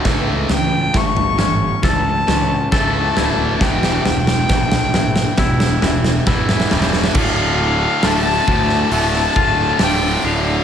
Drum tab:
CC |--------------------------------|--------------------------------|x-------------------------------|
HH |--------------------------------|--------------------------------|--------o-------o-------o-------|
SD |o---o---o---o---o---o---o---o---|o-o-o-o-o-o-o-o-o-o-o-o-o-oooooo|--------o-----o---o-----o-------|
T2 |------------o-------------------|------------o-----------o-o-----|--------------------------------|
FT |o---o-----o-----o---o-------o---|o---o-----o-----o---o-------o---|--------------------------------|
BD |o-------o-------o-------o-------|o-------o-------o-------o-------|o-----------o-------o-----------|